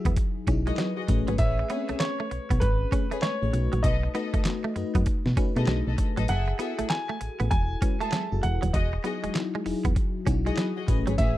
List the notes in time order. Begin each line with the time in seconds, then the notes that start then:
Already playing: F#3 D#4 E4 F#4 G#4 E5
0.05 E1 B3, kick, closed hi-hat
0.16 muted clean electric guitar stroke, kick, closed hi-hat
0.47 B1 F#3 C#4 D#4 E4 G#4, kick, closed hi-hat
0.66 F#3 G#3 D#4 E4 F#4 G#4 A#4 D#5, closed hi-hat
0.75 F#3 B4, snare, clap, closed hi-hat
0.96 F#4 G#4 D#5
1.08 A1 A3 C#4 G#4 B4, muted clean electric guitar stroke, kick, closed hi-hat
1.28 G#1 F#3 G#4 B4 C#5, closed hi-hat
1.38 A1 G#4 B4 C#5 E5, kick, closed hi-hat
1.59 muted clean electric guitar stroke
1.69 A3 B3 C4 G#4 B4 C#5, closed hi-hat
1.76 C#4
1.89 B1 A3, closed hi-hat
2.00 C#5, snare, clap, closed hi-hat
2.20 A3
2.31 B1, muted clean electric guitar stroke, closed hi-hat
2.50 B1 B3, kick, closed hi-hat
2.60 G#1 B4, muted clean electric guitar stroke, kick, closed hi-hat
2.92 A3 C#4 G#4 B4, kick, closed hi-hat
3.11 A3 G#4 B4 C#5, closed hi-hat
3.22 G#3 C#5, snare, clap, closed hi-hat
3.42 A1 A3 C#4 G#4 C#5
3.53 B1 A3 D#4 F#4 B4, muted clean electric guitar stroke, closed hi-hat
3.73 A#1 F#3, closed hi-hat
3.83 B1 A4 B4 D#5, kick, closed hi-hat
4.03 muted clean electric guitar stroke
4.14 A3 B3 D#4 F#4 A4 B4 D#5, closed hi-hat
4.34 F#2 A3, kick, closed hi-hat
4.44 A3 D#4 F#4 B4, snare, clap, closed hi-hat
4.64 A3
4.76 F#2 A3 D#4 F#4 B4, muted clean electric guitar stroke, closed hi-hat
4.95 F#2 B3, kick, closed hi-hat
5.06 muted clean electric guitar stroke, kick, closed hi-hat
5.26 B2, snare
5.37 A3 C#4 D#4 F#4 B4, kick, closed hi-hat
5.56 B2 A3 D4 F#4 G#4 A4 B4 D#5, closed hi-hat
5.63 D#4, snare, clap
5.67 B1 F#3, closed hi-hat
5.87 B1 A4 B4 D#5
5.98 muted clean electric guitar stroke, kick, closed hi-hat
6.17 A1 F#3 A4 B4 D#5, closed hi-hat
6.28 F#1 G#4 A4 E5 F#5, closed hi-hat
6.48 muted clean electric guitar stroke
6.59 B3 E4 F#4 G#4 A4 E5, closed hi-hat
6.79 A1 A3, closed hi-hat
6.89 G#5, snare, clap, closed hi-hat
7.09 A3
7.21 A1, muted clean electric guitar stroke, closed hi-hat
7.40 A1 B3, closed hi-hat
7.51 E1 G#5, muted clean electric guitar stroke, kick, closed hi-hat
7.81 G#3 C#4 E4 F#4 B4, kick, closed hi-hat
8.01 A3 G#4 A4 E5 A5, closed hi-hat
8.12 F#3, snare, clap, closed hi-hat
8.32 F#1 E4 F#4 G#4 A4
8.43 E1 F#5, muted clean electric guitar stroke, closed hi-hat
8.62 D#1 F#3, closed hi-hat
8.73 E1 F#4 G#4 D#5, kick, closed hi-hat
8.93 muted clean electric guitar stroke
9.04 F#3 B3 D#4 E4 F#4 G#4 D#5, closed hi-hat
9.24 E1 G#3, closed hi-hat
9.34 F#3 D#4 E4 F#4, snare, clap, closed hi-hat
9.55 G#3
9.65 E1 F#3 D#4 E4 G#4, muted clean electric guitar stroke, open hi-hat
9.85 E1 B3, kick, closed hi-hat
9.96 muted clean electric guitar stroke, kick, closed hi-hat
10.26 B1 F#3 C#4 D#4 E4 F#4, kick, closed hi-hat
10.45 F#3 G#3 D#4 E4 F#4 G#4 D#5, closed hi-hat
10.57 F#3 B5, snare, clap, closed hi-hat
10.76 F#4 G#4 D#5 F#5
10.87 A1 A3 C#4 G#4 B4, muted clean electric guitar stroke, kick, closed hi-hat
11.07 G#1 F#3 G#4 B4 C#5, closed hi-hat
11.18 A1 G#4 B4 C#5 E5, kick, closed hi-hat